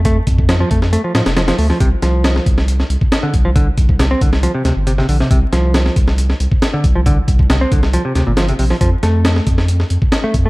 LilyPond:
<<
  \new Staff \with { instrumentName = "Picked electric bass" } { \clef bass \time 4/4 \key f \mixolydian \tempo 4 = 137 a16 r8. f16 f16 a16 r16 a16 f16 f16 r16 f16 f16 a16 f16 | c16 r16 f4 r4. r16 d16 r16 f16 | d16 r8. c16 c'16 d16 r16 f16 c16 c16 r16 c16 c16 d16 c16 | c16 r16 f4 r4. r16 d16 r16 f16 |
d16 r8. c16 c'16 d16 r16 f16 c16 c16 bes,16 f16 c16 c16 f16 | f16 r16 a4 r4. r16 a16 r16 a16 | }
  \new Staff \with { instrumentName = "Sub bass" } { \clef bass \time 4/4 \key f \mixolydian f,16 r16 f,8. r16 f,8 r8 a,16 f,,8 r16 d,16 r16 | c,16 r16 c,8. r16 c,8. r16 c,16 r8. c,8~ | c,16 r16 c,8. r16 c,8 r8 d,16 g,,8 r16 bes,,16 r16 | c,16 r16 c,8. r16 c,8. r16 c,16 r8. c,8~ |
c,16 r16 c,8. r16 c,8 r8 d,16 g,,8 r16 bes,,16 r16 | f,16 r16 f,8. r16 f,8. r16 f,16 r8. f,8 | }
  \new DrumStaff \with { instrumentName = "Drums" } \drummode { \time 4/4 <hh bd>8 <hh bd>16 bd16 <hh sn>8 <hh bd>16 sn16 hh8 <hh sn>16 <hh sn>16 <hh sn>16 <hh sn>16 hho16 sn16 | <hh bd>8 <hh sn>8 <hh sn>16 sn16 <hh bd>16 sn16 hh16 sn16 hh16 bd16 <hh sn>8 <hh bd>8 | <hh bd>8 <hh bd>16 bd16 <hh sn>8 <hh bd>16 sn16 hh8 <hh sn>8 hh16 sn16 hho16 sn16 | <hh bd>8 <hh sn>8 <hh sn>16 sn16 <hh bd>16 sn16 hh16 sn16 hh16 bd16 <hh sn>8 <hh bd>8 |
<hh bd>8 <hh bd>16 bd16 <hh sn>8 <hh bd>16 sn16 hh8 <hh sn>8 <hh sn>16 hh16 hho16 sn16 | <hh bd>8 <hh sn>8 <hh sn>16 sn16 <hh bd>16 sn16 hh16 sn16 hh16 bd16 <hh sn>8 <hh bd>8 | }
>>